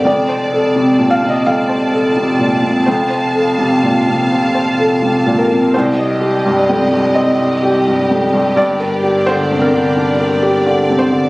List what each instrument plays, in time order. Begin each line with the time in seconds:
Already playing: string section D5
0.05 double bass F1, felt piano F2 D5, string section C4 A5
0.29 felt piano C5
0.52 felt piano A4
0.76 felt piano C3
0.99 felt piano A#2
1.10 felt piano F5
1.23 felt piano C3
1.29 felt piano D#5
1.46 felt piano F2 F5
1.69 felt piano C5
1.92 felt piano A4
2.17 felt piano C3
2.39 felt piano A#2
2.63 felt piano C3
2.85 felt piano F2 C5, string section F5
3.11 felt piano C5
3.35 felt piano A4
3.58 felt piano C3
3.83 felt piano A#2
4.07 felt piano C3
4.32 felt piano C4
4.55 felt piano C5
4.79 felt piano A4
5.02 felt piano C3
5.26 felt piano A#2
5.38 felt piano A#4
5.52 felt piano C3
5.74 double bass C2, felt piano C2 C5, string section C4 G4 D#5
5.98 felt piano D#5
6.21 felt piano G4
6.45 felt piano G2
6.69 felt piano F2
6.92 felt piano G2
7.15 felt piano C4 D#5
7.40 felt piano D#5
7.63 felt piano G4
7.87 felt piano G2
8.11 felt piano F2
8.33 felt piano G2
8.55 double bass G1, felt piano G2 D5, string section D4 D5
8.80 felt piano A#4
9.03 felt piano G4
9.26 felt piano D3 C5
9.51 felt piano C3
9.61 felt piano A#4
9.74 felt piano D3
9.96 felt piano D4
10.20 felt piano A#4
10.43 felt piano G4
10.66 felt piano D3
10.89 felt piano C3
10.99 felt piano C5
11.12 felt piano D3